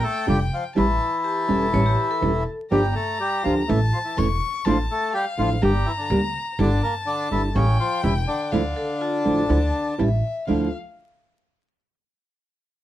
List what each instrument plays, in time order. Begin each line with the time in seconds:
Already playing: violin G5
0.03 bandoneon A3 A4
0.26 upright bass F1, nylon-string guitar D3 G3 D4 F4, bandoneon G3 G4
0.53 bandoneon F3 F4
0.75 upright bass A1, nylon-string guitar E3 G3 C#4 E4, bandoneon E3 E4, violin A5
1.24 vibraphone G4, violin A5
1.48 upright bass E1, nylon-string guitar E3 G3 C#4 E4, vibraphone A4
1.73 upright bass A1, nylon-string guitar E3 G3 C#4 E4, vibraphone C#5
1.86 vibraphone G4
2.11 vibraphone A4
2.21 upright bass E1, nylon-string guitar E3 G3 C#4 E4
2.71 upright bass G1, nylon-string guitar D3 F3 A#3 D4 G4, bandoneon G3 G4, violin A#5
2.95 bandoneon A3 A4
3.20 bandoneon G3 G4
3.43 upright bass D2, nylon-string guitar D3 F3 A#3 D4 G4, bandoneon F3 F4
3.68 upright bass A1, nylon-string guitar E3 A3 C#4 E4, bandoneon E3 E4, violin A5
3.93 bandoneon F3 F4
4.04 bandoneon E3 E4
4.17 upright bass E1, nylon-string guitar E3 A3 C#4 E4, violin C#6
4.65 upright bass A1, bandoneon F3 F4, nylon-string guitar F3 A3 D4 E4, violin A5
4.91 bandoneon A3 A4
5.14 bandoneon G3 G4, violin F5
5.37 upright bass A1, nylon-string guitar F3 A3 D4 E4, bandoneon F3 F4
5.61 upright bass G1, nylon-string guitar D3 G3 A#3 D4 G4, bandoneon G3 G4, violin A#5
5.86 bandoneon E3 E4
5.98 bandoneon D3 D4
6.10 upright bass D2, nylon-string guitar D3 G3 A#3 D4 G4
6.59 upright bass G1, nylon-string guitar D3 G3 D4 E4, bandoneon D3 D4, violin A5
6.83 bandoneon A#3 A#4
7.06 bandoneon D3 D4
7.31 upright bass G1, nylon-string guitar D3 G3 D4 E4, bandoneon E3 E4
7.54 upright bass A1, bandoneon C#3 C#4, nylon-string guitar E3 G3 C#4 E4, violin G5
7.79 bandoneon F3 F4
8.03 upright bass E1, nylon-string guitar E3 G3 C#4 E4, bandoneon E3 E4
8.27 bandoneon D3 D4
8.52 upright bass D2, nylon-string guitar D3 F3 A3 D4 E4, violin F5
8.76 vibraphone A4
9.01 vibraphone F4, violin A5
9.24 upright bass A1, nylon-string guitar D3 F3 A3 D4 E4
9.48 upright bass D2, nylon-string guitar D3 F3 A3 D4 E4
9.98 upright bass A1, nylon-string guitar E3 G3 C#4 E4, violin E5
10.47 upright bass D2, nylon-string guitar D3 F3 A3 D4 E4, vibraphone F4, violin F5